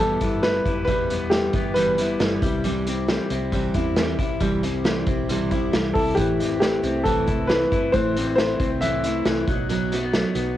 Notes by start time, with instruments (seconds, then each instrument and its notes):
Already playing: fingered electric bass G1, clean electric guitar B3 E4
0.00 steel-string acoustic guitar E2 B2 E3 G3 B3 E4, upright piano A4
0.21 fingered electric bass G1, steel-string acoustic guitar E3 G3 B3 E4, kick, closed hi-hat
0.43 steel-string acoustic guitar E3 G3 B3 E4, upright piano B4, snare, closed hi-hat
0.65 fingered electric bass F#1, steel-string acoustic guitar E3 G3 B3 E4, kick, closed hi-hat
0.85 fingered electric bass E1, steel-string acoustic guitar E2 B2 E3 G3, upright piano B4, kick, closed hi-hat
0.89 steel-string acoustic guitar B3 E4
1.10 steel-string acoustic guitar E3 G3 B3 E4, closed hi-hat
1.30 steel-string acoustic guitar E3 G3 B3 E4, upright piano G4, snare, closed hi-hat
1.53 fingered electric bass G1, steel-string acoustic guitar E3 G3 B3 E4, kick, closed hi-hat
1.74 steel-string acoustic guitar E2 B2 E3 G3 B3 E4, upright piano B4, closed hi-hat
1.97 steel-string acoustic guitar E3 G3 B3 E4, closed hi-hat
2.19 fingered electric bass G1, steel-string acoustic guitar E3 G3 B3 E4, snare, closed hi-hat
2.42 fingered electric bass C2, steel-string acoustic guitar G3 C4 E4, kick, closed hi-hat
2.64 steel-string acoustic guitar C3 E3 G3 C4 E4, closed hi-hat
2.87 steel-string acoustic guitar G3 C4 E4, closed hi-hat
3.08 steel-string acoustic guitar E3 G3 C4 E4, snare, closed hi-hat
3.30 fingered electric bass C2, steel-string acoustic guitar G3 C4 E4, closed hi-hat
3.52 steel-string acoustic guitar C3 E3 G3 C4 E4, kick, closed hi-hat
3.74 fingered electric bass E2, steel-string acoustic guitar G3 C4 E4, kick, closed hi-hat
3.96 steel-string acoustic guitar E3 G3 C4 E4, snare, closed hi-hat
4.19 fingered electric bass B1, steel-string acoustic guitar G3 C4 E4, kick, closed hi-hat
4.40 fingered electric bass C2, steel-string acoustic guitar C3 E3 G3 C4 E4, kick, closed hi-hat
4.63 steel-string acoustic guitar G3 C4 E4, closed hi-hat
4.84 steel-string acoustic guitar E3 G3 C4 E4, snare, closed hi-hat
5.07 fingered electric bass B1, steel-string acoustic guitar G3 C4 E4, kick, closed hi-hat
5.29 steel-string acoustic guitar C3 E3 G3 C4 E4, closed hi-hat
5.51 steel-string acoustic guitar G3 C4 E4, kick, closed hi-hat
5.73 fingered electric bass C2, steel-string acoustic guitar E3 G3 C4 E4, snare, closed hi-hat
5.94 fingered electric bass C2, steel-string acoustic guitar G3 C4 E4, upright piano A4, kick, open hi-hat
6.15 fingered electric bass A1, steel-string acoustic guitar A2 E3 A3 C4 E4, upright piano G4, kick, closed hi-hat
6.39 steel-string acoustic guitar A3 C4 E4, closed hi-hat
6.60 steel-string acoustic guitar E3 A3 C4 E4, upright piano G4, snare, closed hi-hat
6.83 fingered electric bass C2, steel-string acoustic guitar A3 C4 E4, closed hi-hat
7.04 steel-string acoustic guitar A2 E3 A3 C4 E4, upright piano A4, kick, closed hi-hat
7.27 fingered electric bass C2, steel-string acoustic guitar A3 C4 E4, kick, closed hi-hat
7.47 steel-string acoustic guitar E3 A3 C4, upright piano B4, snare, closed hi-hat
7.51 steel-string acoustic guitar E4
7.71 fingered electric bass G1, steel-string acoustic guitar A3 C4 E4, kick, closed hi-hat
7.92 fingered electric bass A1, steel-string acoustic guitar A2 E3 A3 C4 E4, upright piano C5, kick, closed hi-hat
8.16 steel-string acoustic guitar A3 C4 E4, closed hi-hat
8.36 steel-string acoustic guitar E3 A3 C4, upright piano C5, snare, closed hi-hat
8.40 steel-string acoustic guitar E4
8.60 fingered electric bass C2, steel-string acoustic guitar A3 C4 E4, kick, closed hi-hat
8.81 steel-string acoustic guitar A2 E3 A3 C4 E4, upright piano E5, closed hi-hat
9.03 steel-string acoustic guitar A3 C4 E4, closed hi-hat
9.25 fingered electric bass C2, steel-string acoustic guitar E3 A3 C4 E4, snare, closed hi-hat
9.47 fingered electric bass B1, clean electric guitar F#3, steel-string acoustic guitar B3 D#4 F#4, kick, closed hi-hat
9.69 steel-string acoustic guitar B2 F#3 B3 D#4 F#4, closed hi-hat
9.92 clean electric guitar A3, steel-string acoustic guitar B3 D#4 F#4, closed hi-hat
10.03 clean electric guitar B3
10.14 steel-string acoustic guitar F#3 B3 D#4 F#4, snare, closed hi-hat
10.35 fingered electric bass B1, steel-string acoustic guitar B3 D#4 F#4, closed hi-hat